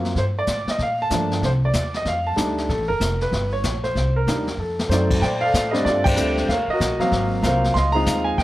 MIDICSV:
0, 0, Header, 1, 5, 480
1, 0, Start_track
1, 0, Key_signature, -2, "major"
1, 0, Tempo, 316289
1, 238, Time_signature, 4, 2, 24, 8
1, 12799, End_track
2, 0, Start_track
2, 0, Title_t, "Grand piano"
2, 0, Program_c, 0, 0
2, 0, Note_on_c, 0, 54, 54
2, 0, Note_on_c, 0, 58, 48
2, 0, Note_on_c, 0, 60, 49
2, 0, Note_on_c, 0, 65, 55
2, 229, Note_off_c, 0, 54, 0
2, 232, Note_off_c, 0, 60, 0
2, 233, Note_off_c, 0, 58, 0
2, 234, Note_off_c, 0, 65, 0
2, 275, Note_on_c, 0, 72, 76
2, 351, Note_off_c, 0, 72, 0
2, 586, Note_on_c, 0, 74, 92
2, 1013, Note_off_c, 0, 74, 0
2, 1068, Note_on_c, 0, 75, 76
2, 1225, Note_off_c, 0, 75, 0
2, 1253, Note_on_c, 0, 77, 83
2, 1540, Note_off_c, 0, 77, 0
2, 1547, Note_on_c, 0, 81, 104
2, 1671, Note_on_c, 0, 53, 52
2, 1680, Note_on_c, 0, 58, 48
2, 1684, Note_on_c, 0, 57, 48
2, 1687, Note_on_c, 0, 62, 59
2, 2156, Note_off_c, 0, 53, 0
2, 2160, Note_off_c, 0, 58, 0
2, 2162, Note_off_c, 0, 57, 0
2, 2164, Note_off_c, 0, 62, 0
2, 2199, Note_on_c, 0, 72, 77
2, 2200, Note_off_c, 0, 81, 0
2, 2274, Note_off_c, 0, 72, 0
2, 2505, Note_on_c, 0, 74, 84
2, 2933, Note_off_c, 0, 74, 0
2, 2983, Note_on_c, 0, 75, 80
2, 3144, Note_off_c, 0, 75, 0
2, 3155, Note_on_c, 0, 77, 84
2, 3439, Note_on_c, 0, 81, 85
2, 3452, Note_off_c, 0, 77, 0
2, 3587, Note_on_c, 0, 55, 52
2, 3591, Note_on_c, 0, 63, 56
2, 3592, Note_on_c, 0, 57, 49
2, 3598, Note_on_c, 0, 62, 58
2, 4043, Note_off_c, 0, 81, 0
2, 4074, Note_off_c, 0, 55, 0
2, 4076, Note_off_c, 0, 63, 0
2, 4077, Note_off_c, 0, 57, 0
2, 4080, Note_off_c, 0, 62, 0
2, 4090, Note_on_c, 0, 69, 75
2, 4370, Note_off_c, 0, 69, 0
2, 4373, Note_on_c, 0, 70, 94
2, 4826, Note_off_c, 0, 70, 0
2, 4890, Note_on_c, 0, 71, 77
2, 5326, Note_off_c, 0, 71, 0
2, 5353, Note_on_c, 0, 73, 88
2, 5823, Note_on_c, 0, 72, 76
2, 5845, Note_off_c, 0, 73, 0
2, 6318, Note_on_c, 0, 70, 74
2, 6320, Note_off_c, 0, 72, 0
2, 6488, Note_on_c, 0, 58, 45
2, 6497, Note_on_c, 0, 55, 47
2, 6502, Note_on_c, 0, 62, 43
2, 6503, Note_on_c, 0, 63, 54
2, 6760, Note_off_c, 0, 58, 0
2, 6765, Note_off_c, 0, 55, 0
2, 6767, Note_off_c, 0, 62, 0
2, 6768, Note_off_c, 0, 63, 0
2, 6922, Note_off_c, 0, 70, 0
2, 6973, Note_on_c, 0, 69, 62
2, 7430, Note_on_c, 0, 72, 76
2, 7445, Note_off_c, 0, 69, 0
2, 7451, Note_on_c, 0, 54, 55
2, 7455, Note_on_c, 0, 57, 47
2, 7457, Note_on_c, 0, 60, 51
2, 7459, Note_on_c, 0, 74, 62
2, 7460, Note_on_c, 0, 63, 55
2, 7467, Note_on_c, 0, 69, 52
2, 7898, Note_off_c, 0, 63, 0
2, 7902, Note_off_c, 0, 69, 0
2, 7922, Note_on_c, 0, 79, 88
2, 7927, Note_off_c, 0, 54, 0
2, 7928, Note_off_c, 0, 57, 0
2, 7930, Note_off_c, 0, 60, 0
2, 7931, Note_off_c, 0, 72, 0
2, 7931, Note_off_c, 0, 74, 0
2, 7958, Note_on_c, 0, 72, 62
2, 7968, Note_on_c, 0, 74, 65
2, 8210, Note_on_c, 0, 77, 107
2, 8229, Note_off_c, 0, 74, 0
2, 8237, Note_off_c, 0, 79, 0
2, 8249, Note_on_c, 0, 69, 63
2, 8252, Note_on_c, 0, 74, 65
2, 8665, Note_on_c, 0, 75, 77
2, 8689, Note_on_c, 0, 55, 66
2, 8701, Note_on_c, 0, 57, 59
2, 8701, Note_on_c, 0, 60, 57
2, 8703, Note_on_c, 0, 62, 77
2, 8713, Note_off_c, 0, 77, 0
2, 8839, Note_off_c, 0, 72, 0
2, 8847, Note_off_c, 0, 75, 0
2, 8854, Note_off_c, 0, 74, 0
2, 8876, Note_on_c, 0, 74, 84
2, 8897, Note_off_c, 0, 69, 0
2, 8920, Note_on_c, 0, 65, 61
2, 8920, Note_on_c, 0, 69, 56
2, 9163, Note_off_c, 0, 74, 0
2, 9169, Note_on_c, 0, 79, 104
2, 9206, Note_on_c, 0, 74, 64
2, 9213, Note_on_c, 0, 72, 64
2, 9317, Note_off_c, 0, 55, 0
2, 9323, Note_off_c, 0, 57, 0
2, 9323, Note_off_c, 0, 60, 0
2, 9324, Note_off_c, 0, 62, 0
2, 9354, Note_on_c, 0, 55, 61
2, 9358, Note_on_c, 0, 60, 59
2, 9362, Note_on_c, 0, 62, 71
2, 9363, Note_on_c, 0, 57, 60
2, 9799, Note_off_c, 0, 65, 0
2, 9799, Note_off_c, 0, 69, 0
2, 9805, Note_off_c, 0, 74, 0
2, 9809, Note_off_c, 0, 72, 0
2, 9837, Note_off_c, 0, 55, 0
2, 9839, Note_off_c, 0, 60, 0
2, 9839, Note_on_c, 0, 77, 83
2, 9841, Note_off_c, 0, 57, 0
2, 9841, Note_off_c, 0, 62, 0
2, 9851, Note_off_c, 0, 79, 0
2, 9891, Note_on_c, 0, 73, 66
2, 9892, Note_on_c, 0, 70, 63
2, 10123, Note_off_c, 0, 77, 0
2, 10170, Note_on_c, 0, 75, 92
2, 10194, Note_off_c, 0, 70, 0
2, 10214, Note_on_c, 0, 66, 66
2, 10217, Note_on_c, 0, 70, 65
2, 10620, Note_on_c, 0, 54, 70
2, 10622, Note_on_c, 0, 58, 65
2, 10629, Note_on_c, 0, 77, 79
2, 10632, Note_on_c, 0, 60, 66
2, 10764, Note_off_c, 0, 73, 0
2, 11056, Note_off_c, 0, 75, 0
2, 11078, Note_off_c, 0, 66, 0
2, 11079, Note_off_c, 0, 70, 0
2, 11241, Note_off_c, 0, 54, 0
2, 11242, Note_off_c, 0, 58, 0
2, 11246, Note_off_c, 0, 77, 0
2, 11247, Note_off_c, 0, 60, 0
2, 11267, Note_on_c, 0, 54, 60
2, 11273, Note_on_c, 0, 60, 54
2, 11275, Note_on_c, 0, 58, 55
2, 11275, Note_on_c, 0, 65, 63
2, 11280, Note_on_c, 0, 77, 85
2, 11338, Note_on_c, 0, 70, 67
2, 11342, Note_on_c, 0, 72, 65
2, 11725, Note_off_c, 0, 77, 0
2, 11747, Note_on_c, 0, 84, 97
2, 11752, Note_off_c, 0, 54, 0
2, 11755, Note_off_c, 0, 60, 0
2, 11756, Note_off_c, 0, 58, 0
2, 11756, Note_off_c, 0, 65, 0
2, 11756, Note_off_c, 0, 70, 0
2, 11758, Note_off_c, 0, 72, 0
2, 11800, Note_on_c, 0, 75, 69
2, 11801, Note_on_c, 0, 77, 70
2, 12024, Note_on_c, 0, 82, 103
2, 12035, Note_off_c, 0, 84, 0
2, 12053, Note_off_c, 0, 77, 0
2, 12056, Note_on_c, 0, 56, 67
2, 12056, Note_on_c, 0, 60, 63
2, 12059, Note_off_c, 0, 75, 0
2, 12067, Note_on_c, 0, 63, 65
2, 12071, Note_on_c, 0, 65, 74
2, 12076, Note_on_c, 0, 77, 74
2, 12082, Note_on_c, 0, 75, 71
2, 12511, Note_on_c, 0, 80, 85
2, 12537, Note_off_c, 0, 82, 0
2, 12677, Note_off_c, 0, 56, 0
2, 12677, Note_off_c, 0, 60, 0
2, 12683, Note_off_c, 0, 63, 0
2, 12685, Note_off_c, 0, 65, 0
2, 12706, Note_off_c, 0, 80, 0
2, 12720, Note_on_c, 0, 79, 89
2, 12746, Note_off_c, 0, 75, 0
2, 12799, Note_off_c, 0, 77, 0
2, 12799, Note_off_c, 0, 79, 0
2, 12799, End_track
3, 0, Start_track
3, 0, Title_t, "Upright bass"
3, 0, Program_c, 1, 32
3, 0, Note_on_c, 1, 42, 80
3, 218, Note_off_c, 1, 42, 0
3, 229, Note_on_c, 1, 43, 71
3, 699, Note_off_c, 1, 43, 0
3, 715, Note_on_c, 1, 45, 75
3, 995, Note_off_c, 1, 45, 0
3, 1189, Note_on_c, 1, 46, 71
3, 1660, Note_off_c, 1, 46, 0
3, 1674, Note_on_c, 1, 43, 78
3, 2143, Note_off_c, 1, 43, 0
3, 2155, Note_on_c, 1, 36, 76
3, 2623, Note_off_c, 1, 36, 0
3, 2633, Note_on_c, 1, 39, 77
3, 3102, Note_off_c, 1, 39, 0
3, 3111, Note_on_c, 1, 41, 72
3, 3582, Note_off_c, 1, 41, 0
3, 3601, Note_on_c, 1, 38, 80
3, 4067, Note_off_c, 1, 38, 0
3, 4080, Note_on_c, 1, 34, 77
3, 4222, Note_off_c, 1, 34, 0
3, 4222, Note_on_c, 1, 33, 50
3, 4380, Note_off_c, 1, 33, 0
3, 4389, Note_on_c, 1, 29, 56
3, 4544, Note_off_c, 1, 29, 0
3, 4554, Note_on_c, 1, 29, 78
3, 5024, Note_off_c, 1, 29, 0
3, 5036, Note_on_c, 1, 31, 75
3, 5505, Note_off_c, 1, 31, 0
3, 5518, Note_on_c, 1, 34, 79
3, 5986, Note_off_c, 1, 34, 0
3, 5997, Note_on_c, 1, 36, 77
3, 6465, Note_off_c, 1, 36, 0
3, 6478, Note_on_c, 1, 39, 77
3, 6930, Note_off_c, 1, 39, 0
3, 6939, Note_on_c, 1, 41, 67
3, 7409, Note_off_c, 1, 41, 0
3, 7418, Note_on_c, 1, 42, 81
3, 7895, Note_off_c, 1, 42, 0
3, 7914, Note_on_c, 1, 46, 85
3, 8383, Note_off_c, 1, 46, 0
3, 8398, Note_on_c, 1, 45, 82
3, 8865, Note_off_c, 1, 45, 0
3, 8879, Note_on_c, 1, 43, 74
3, 9332, Note_off_c, 1, 43, 0
3, 9341, Note_on_c, 1, 38, 84
3, 9816, Note_off_c, 1, 38, 0
3, 9841, Note_on_c, 1, 39, 82
3, 10124, Note_off_c, 1, 39, 0
3, 10318, Note_on_c, 1, 34, 85
3, 10597, Note_off_c, 1, 34, 0
3, 10798, Note_on_c, 1, 32, 81
3, 11263, Note_off_c, 1, 32, 0
3, 11270, Note_on_c, 1, 36, 85
3, 11739, Note_off_c, 1, 36, 0
3, 11759, Note_on_c, 1, 37, 82
3, 12223, Note_off_c, 1, 37, 0
3, 12234, Note_on_c, 1, 39, 85
3, 12700, Note_off_c, 1, 39, 0
3, 12710, Note_on_c, 1, 41, 77
3, 12799, Note_off_c, 1, 41, 0
3, 12799, End_track
4, 0, Start_track
4, 0, Title_t, "Muted upright bass strokes"
4, 1004, Note_on_c, 9, 29, 34
4, 1156, Note_off_c, 9, 29, 0
4, 10132, Note_on_c, 9, 29, 36
4, 10284, Note_off_c, 9, 29, 0
4, 10606, Note_on_c, 9, 29, 35
4, 10758, Note_off_c, 9, 29, 0
4, 12799, End_track
5, 0, Start_track
5, 0, Title_t, "Drums"
5, 69, Note_on_c, 9, 38, 32
5, 221, Note_off_c, 9, 38, 0
5, 236, Note_on_c, 9, 36, 20
5, 239, Note_on_c, 9, 25, 43
5, 239, Note_on_c, 9, 38, 35
5, 388, Note_off_c, 9, 36, 0
5, 391, Note_off_c, 9, 38, 0
5, 710, Note_on_c, 9, 44, 47
5, 714, Note_on_c, 9, 38, 48
5, 718, Note_on_c, 9, 36, 21
5, 861, Note_off_c, 9, 44, 0
5, 866, Note_off_c, 9, 38, 0
5, 870, Note_off_c, 9, 36, 0
5, 1025, Note_on_c, 9, 38, 36
5, 1177, Note_off_c, 9, 38, 0
5, 1198, Note_on_c, 9, 36, 19
5, 1199, Note_off_c, 9, 25, 0
5, 1199, Note_on_c, 9, 25, 41
5, 1199, Note_on_c, 9, 38, 36
5, 1350, Note_off_c, 9, 36, 0
5, 1351, Note_off_c, 9, 38, 0
5, 1673, Note_on_c, 9, 44, 52
5, 1677, Note_on_c, 9, 38, 49
5, 1678, Note_on_c, 9, 36, 18
5, 1824, Note_off_c, 9, 44, 0
5, 1829, Note_off_c, 9, 38, 0
5, 1830, Note_off_c, 9, 36, 0
5, 1993, Note_on_c, 9, 38, 33
5, 2145, Note_off_c, 9, 38, 0
5, 2159, Note_on_c, 9, 36, 18
5, 2164, Note_off_c, 9, 25, 0
5, 2164, Note_on_c, 9, 25, 39
5, 2164, Note_on_c, 9, 38, 36
5, 2311, Note_off_c, 9, 36, 0
5, 2316, Note_off_c, 9, 38, 0
5, 2631, Note_on_c, 9, 44, 52
5, 2636, Note_on_c, 9, 38, 47
5, 2638, Note_on_c, 9, 36, 20
5, 2783, Note_off_c, 9, 44, 0
5, 2787, Note_off_c, 9, 38, 0
5, 2789, Note_off_c, 9, 36, 0
5, 2945, Note_on_c, 9, 38, 36
5, 3096, Note_off_c, 9, 38, 0
5, 3112, Note_off_c, 9, 25, 0
5, 3112, Note_on_c, 9, 25, 44
5, 3112, Note_on_c, 9, 38, 34
5, 3117, Note_on_c, 9, 36, 16
5, 3263, Note_off_c, 9, 38, 0
5, 3269, Note_off_c, 9, 36, 0
5, 3600, Note_on_c, 9, 44, 47
5, 3602, Note_on_c, 9, 36, 18
5, 3604, Note_on_c, 9, 38, 49
5, 3752, Note_off_c, 9, 44, 0
5, 3754, Note_off_c, 9, 36, 0
5, 3756, Note_off_c, 9, 38, 0
5, 3916, Note_on_c, 9, 38, 33
5, 4068, Note_off_c, 9, 38, 0
5, 4084, Note_on_c, 9, 36, 22
5, 4089, Note_off_c, 9, 25, 0
5, 4089, Note_on_c, 9, 25, 44
5, 4089, Note_on_c, 9, 38, 36
5, 4236, Note_off_c, 9, 36, 0
5, 4241, Note_off_c, 9, 38, 0
5, 4561, Note_on_c, 9, 44, 51
5, 4564, Note_on_c, 9, 36, 22
5, 4566, Note_on_c, 9, 38, 49
5, 4713, Note_off_c, 9, 44, 0
5, 4716, Note_off_c, 9, 36, 0
5, 4718, Note_off_c, 9, 38, 0
5, 4870, Note_on_c, 9, 38, 34
5, 5022, Note_off_c, 9, 38, 0
5, 5042, Note_off_c, 9, 25, 0
5, 5042, Note_on_c, 9, 25, 35
5, 5042, Note_on_c, 9, 38, 34
5, 5043, Note_on_c, 9, 36, 22
5, 5194, Note_off_c, 9, 38, 0
5, 5195, Note_off_c, 9, 36, 0
5, 5515, Note_on_c, 9, 44, 47
5, 5520, Note_on_c, 9, 38, 52
5, 5521, Note_on_c, 9, 36, 16
5, 5667, Note_off_c, 9, 44, 0
5, 5672, Note_off_c, 9, 36, 0
5, 5672, Note_off_c, 9, 38, 0
5, 5824, Note_on_c, 9, 38, 32
5, 5975, Note_off_c, 9, 38, 0
5, 6002, Note_on_c, 9, 36, 16
5, 6006, Note_off_c, 9, 25, 0
5, 6006, Note_on_c, 9, 25, 40
5, 6006, Note_on_c, 9, 38, 34
5, 6154, Note_off_c, 9, 36, 0
5, 6158, Note_off_c, 9, 38, 0
5, 6483, Note_on_c, 9, 36, 21
5, 6483, Note_on_c, 9, 44, 49
5, 6488, Note_on_c, 9, 38, 48
5, 6635, Note_off_c, 9, 36, 0
5, 6635, Note_off_c, 9, 44, 0
5, 6639, Note_off_c, 9, 38, 0
5, 6786, Note_on_c, 9, 38, 35
5, 6937, Note_off_c, 9, 38, 0
5, 7272, Note_on_c, 9, 38, 55
5, 7423, Note_off_c, 9, 38, 0
5, 7448, Note_on_c, 9, 44, 45
5, 7453, Note_on_c, 9, 38, 49
5, 7600, Note_off_c, 9, 44, 0
5, 7605, Note_off_c, 9, 38, 0
5, 7745, Note_on_c, 9, 49, 59
5, 7747, Note_on_c, 9, 36, 64
5, 7896, Note_off_c, 9, 49, 0
5, 7899, Note_off_c, 9, 36, 0
5, 7922, Note_on_c, 9, 36, 22
5, 7927, Note_off_c, 9, 25, 0
5, 7927, Note_on_c, 9, 25, 48
5, 7927, Note_on_c, 9, 38, 43
5, 8074, Note_off_c, 9, 36, 0
5, 8079, Note_off_c, 9, 38, 0
5, 8405, Note_on_c, 9, 36, 23
5, 8406, Note_on_c, 9, 44, 55
5, 8411, Note_on_c, 9, 38, 59
5, 8557, Note_off_c, 9, 36, 0
5, 8558, Note_off_c, 9, 44, 0
5, 8562, Note_off_c, 9, 38, 0
5, 8712, Note_on_c, 9, 38, 39
5, 8864, Note_off_c, 9, 38, 0
5, 8886, Note_on_c, 9, 36, 18
5, 8890, Note_off_c, 9, 25, 0
5, 8890, Note_on_c, 9, 25, 42
5, 8890, Note_on_c, 9, 38, 39
5, 9037, Note_off_c, 9, 36, 0
5, 9042, Note_off_c, 9, 38, 0
5, 9192, Note_on_c, 9, 36, 82
5, 9198, Note_on_c, 9, 49, 78
5, 9344, Note_off_c, 9, 36, 0
5, 9350, Note_off_c, 9, 49, 0
5, 9356, Note_on_c, 9, 44, 53
5, 9508, Note_off_c, 9, 44, 0
5, 9675, Note_on_c, 9, 38, 38
5, 9826, Note_off_c, 9, 38, 0
5, 9847, Note_on_c, 9, 36, 18
5, 9853, Note_off_c, 9, 25, 0
5, 9853, Note_on_c, 9, 25, 38
5, 9853, Note_on_c, 9, 38, 42
5, 9999, Note_off_c, 9, 36, 0
5, 10004, Note_off_c, 9, 38, 0
5, 10326, Note_on_c, 9, 36, 25
5, 10329, Note_on_c, 9, 44, 61
5, 10334, Note_on_c, 9, 38, 61
5, 10478, Note_off_c, 9, 36, 0
5, 10481, Note_off_c, 9, 44, 0
5, 10486, Note_off_c, 9, 38, 0
5, 10625, Note_on_c, 9, 38, 40
5, 10777, Note_off_c, 9, 38, 0
5, 10803, Note_on_c, 9, 36, 20
5, 10804, Note_off_c, 9, 25, 0
5, 10804, Note_on_c, 9, 25, 44
5, 10804, Note_on_c, 9, 38, 39
5, 10955, Note_off_c, 9, 36, 0
5, 10955, Note_off_c, 9, 38, 0
5, 11279, Note_on_c, 9, 44, 55
5, 11280, Note_on_c, 9, 36, 18
5, 11283, Note_on_c, 9, 38, 60
5, 11431, Note_off_c, 9, 36, 0
5, 11431, Note_off_c, 9, 44, 0
5, 11435, Note_off_c, 9, 38, 0
5, 11596, Note_on_c, 9, 38, 36
5, 11748, Note_off_c, 9, 38, 0
5, 11764, Note_on_c, 9, 36, 23
5, 11773, Note_off_c, 9, 25, 0
5, 11773, Note_on_c, 9, 25, 45
5, 11773, Note_on_c, 9, 38, 43
5, 11915, Note_off_c, 9, 36, 0
5, 11925, Note_off_c, 9, 38, 0
5, 12236, Note_on_c, 9, 44, 65
5, 12240, Note_on_c, 9, 36, 18
5, 12240, Note_on_c, 9, 38, 60
5, 12388, Note_off_c, 9, 44, 0
5, 12391, Note_off_c, 9, 36, 0
5, 12392, Note_off_c, 9, 38, 0
5, 12718, Note_on_c, 9, 36, 18
5, 12727, Note_off_c, 9, 25, 0
5, 12727, Note_on_c, 9, 25, 42
5, 12727, Note_on_c, 9, 38, 38
5, 12799, Note_off_c, 9, 25, 0
5, 12799, Note_off_c, 9, 36, 0
5, 12799, Note_off_c, 9, 38, 0
5, 12799, End_track
0, 0, End_of_file